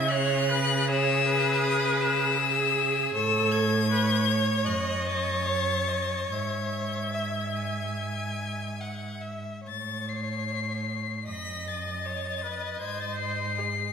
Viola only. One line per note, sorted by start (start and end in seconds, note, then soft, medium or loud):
0.00 0.12 E5 loud
0.10 0.51 C#5 loud
0.50 0.90 B4 loud
0.88 1.27 C#5 loud
1.25 2.38 B4 loud
2.40 3.17 G#4 loud
3.15 3.90 A4 loud
3.91 4.30 B4 medium
4.28 4.67 C#5 loud
4.65 5.47 D#5 loud
5.45 5.90 C#5 medium
5.88 6.33 D#5 medium
6.31 9.26 E5 medium
11.28 12.07 D#5 medium
12.05 12.45 C#5 medium
12.43 12.81 B4 medium
12.81 13.60 C5 medium
13.59 13.93 G#4 medium